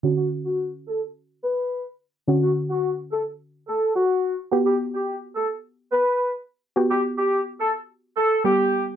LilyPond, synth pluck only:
\new Staff \with { instrumentName = "Synth pluck" } { \time 4/4 \key d \major \tempo 4 = 107 <d cis' fis'>1 | <d cis' fis'>1 | <b fis' g'>1 | <b fis' g'>2. <g b g'>4 | }